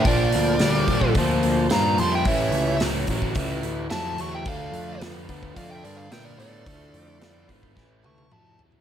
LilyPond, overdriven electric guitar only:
\new Staff \with { instrumentName = "Overdriven electric guitar" } { \clef bass \time 4/4 \key d \minor \tempo 4 = 109 <bes, f>4 <bes, g>8 <bes, g>8 <bes, f>4 <bes, g>8 <bes, g>8 | <a, e>4 <a, fis>8 <a, fis>8 <a, e>4 <a, fis>8 <a, fis>8 | <d a>4 <d b>8 <d b>8 <d a>4 <d b>8 <d b>8 | <d a>4 <d b>8 <d b>8 <a, e>4 <a, fis>8 <a, fis>8 | }